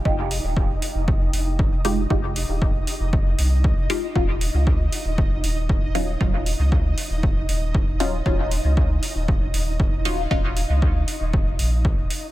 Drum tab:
HH |-o-o-o-o|-o-o-o-o|-o-o-o-o|-o-o-o-o|
BD |o-o-o-o-|o-o-o-o-|o-o-o-o-|o-o-o-o-|

HH |-o-o-o-o|-o-o-o-o|
BD |o-o-o-o-|o-o-o-o-|